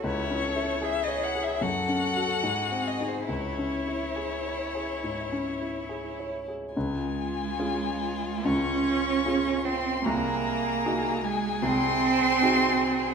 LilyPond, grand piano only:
\new Staff \with { instrumentName = "Grand piano" } { \time 4/4 \key cis \minor \tempo 4 = 74 \tuplet 3/2 { cis,8 cis'8 e'8 gis'8 cis''8 gis'8 fis,8 cis'8 <fis' a'>8 gis,8 bis8 <dis' gis'>8 } | \tuplet 3/2 { cis,8 cis'8 e'8 gis'8 cis''8 gis'8 gis,8 cis'8 e'8 gis'8 cis''8 gis'8 } | \key des \major <des, des>4 <des' f' aes'>4 <des, des>4 <des' f' aes'>4 | <c, c>4 <ees' ges' aes'>4 <c, c>4 <ees' ges' aes'>4 | }